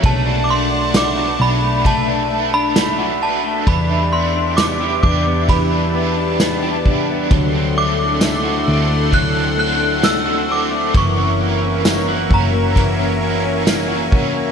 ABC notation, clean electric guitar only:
X:1
M:4/4
L:1/16
Q:1/4=66
K:Bphr
V:1 name="Clean electric guitar"
A, D A, D A, F D A, A, D A, D A, F D A, | E, D B, D B, G D B, E, D B, D B, G D B, | F, C A, C A, F C A, F, C A, C A, F C A, | E, ^C ^A, C A, F C A, E, C A, C A, F C A, |]